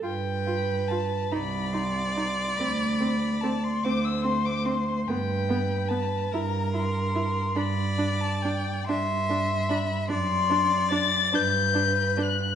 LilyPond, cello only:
\new Staff \with { instrumentName = "Cello" } { \clef bass \time 6/8 \key g \major \tempo 4. = 48 g,4. c,4. | d,4. d,4. | g,4. g,4. | g,4. g,4. |
fis,4. g,4. | }